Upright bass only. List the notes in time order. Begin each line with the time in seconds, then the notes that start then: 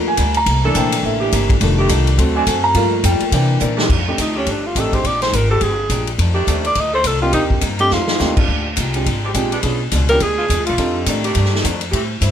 Already playing: D#2
0.18 D2
0.46 C2
0.75 A#1
1.03 A1
1.32 G1
1.60 F1
1.90 C2
2.18 D2
2.47 F#2
2.75 G2
3.04 F2
3.21 muted upright bass stroke
3.32 C3
3.61 A#2
3.89 F2
4.18 D2
4.47 G1
4.75 A1
5.05 A#1
5.33 G#1
5.61 G1
5.90 A#1
6.18 F2
6.47 D#2
6.76 D2
7.04 C2
7.33 D#2
7.62 G2
7.91 F2
8.20 D#2
8.48 D2
8.77 C2
9.06 G#1
9.34 A#1
9.63 B1
9.92 C#2
10.20 D2
10.49 E2
10.60 D2
10.69 B1
10.78 F2
11.06 A2
11.36 G2
11.64 F2
11.93 A2
12.21 G2